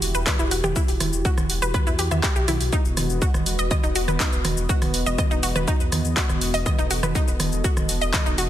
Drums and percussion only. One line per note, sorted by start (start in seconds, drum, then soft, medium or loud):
0.02 open hi-hat loud
0.02 shaker medium
0.15 shaker soft
0.27 kick loud
0.27 cross-stick soft
0.27 clap loud
0.27 low conga medium
0.27 shaker medium
0.39 shaker soft
0.51 open hi-hat loud
0.51 shaker medium
0.64 cross-stick medium
0.64 low conga medium
0.64 shaker soft
0.76 kick loud
0.76 shaker medium
0.88 open hi-hat medium
0.88 shaker soft
1.00 cross-stick medium
1.00 open hi-hat loud
1.00 low conga medium
1.00 shaker medium
1.13 shaker soft
1.25 kick loud
1.25 shaker medium
1.38 cross-stick medium
1.38 low conga medium
1.38 shaker soft
1.50 open hi-hat loud
1.50 shaker medium
1.62 shaker soft
1.74 kick loud
1.74 cross-stick medium
1.74 low conga medium
1.74 shaker medium
1.87 shaker soft
1.99 open hi-hat loud
1.99 shaker medium
2.11 cross-stick medium
2.11 low conga medium
2.11 shaker soft
2.23 kick loud
2.23 clap loud
2.23 shaker medium
2.36 shaker soft
2.48 cross-stick medium
2.48 open hi-hat loud
2.48 low conga medium
2.48 shaker medium
2.61 open hi-hat medium
2.61 shaker soft
2.73 kick loud
2.73 shaker medium
2.85 shaker soft
2.97 cross-stick medium
2.97 open hi-hat loud
2.97 low conga loud
2.97 shaker medium
3.10 shaker soft
3.22 kick loud
3.22 shaker medium
3.34 cross-stick medium
3.34 low conga medium
3.34 shaker soft
3.46 open hi-hat loud
3.46 shaker medium
3.59 shaker soft
3.71 kick loud
3.71 cross-stick medium
3.71 low conga medium
3.71 shaker medium
3.83 shaker soft
3.96 open hi-hat loud
3.96 shaker medium
4.08 cross-stick medium
4.08 low conga medium
4.08 shaker soft
4.20 kick loud
4.20 clap loud
4.20 shaker medium
4.33 shaker soft
4.45 cross-stick medium
4.45 open hi-hat loud
4.45 low conga loud
4.45 shaker medium
4.57 shaker soft
4.69 kick loud
4.69 shaker medium
4.82 cross-stick medium
4.82 open hi-hat medium
4.82 low conga loud
4.82 shaker soft
4.94 open hi-hat loud
4.94 shaker medium
5.06 shaker soft
5.18 kick loud
5.18 cross-stick medium
5.18 low conga loud
5.18 shaker medium
5.31 shaker soft
5.43 open hi-hat loud
5.43 shaker medium
5.56 cross-stick medium
5.56 low conga medium
5.56 shaker soft
5.68 kick loud
5.68 shaker medium
5.80 shaker soft
5.92 cross-stick medium
5.92 open hi-hat loud
5.92 low conga loud
5.92 shaker medium
6.05 shaker soft
6.17 kick loud
6.17 clap loud
6.17 shaker medium
6.29 cross-stick medium
6.29 low conga loud
6.29 shaker soft
6.41 open hi-hat loud
6.41 shaker medium
6.54 open hi-hat medium
6.54 shaker soft
6.66 kick loud
6.66 cross-stick medium
6.66 low conga loud
6.66 shaker medium
6.79 shaker soft
6.91 open hi-hat loud
6.91 shaker medium
7.03 cross-stick medium
7.03 low conga loud
7.03 shaker soft
7.15 kick loud
7.15 shaker medium
7.28 shaker soft
7.40 cross-stick medium
7.40 open hi-hat loud
7.40 low conga loud
7.40 shaker medium
7.52 shaker soft
7.64 kick loud
7.64 shaker medium
7.77 cross-stick medium
7.77 low conga loud
7.77 shaker soft
7.89 open hi-hat loud
7.89 shaker medium
8.02 shaker soft
8.14 kick loud
8.14 cross-stick medium
8.14 clap loud
8.14 low conga loud
8.14 shaker medium
8.26 shaker soft
8.38 open hi-hat loud
8.38 shaker medium